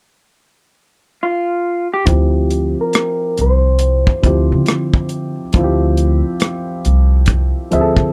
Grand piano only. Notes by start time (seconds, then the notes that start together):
2.05 F3 C4 E4 G4
4.22 F3 C4 E4 G4
5.53 F3 C4 E4 F4
5.64 G4
7.71 F3 C4 G#4 E5
7.81 A4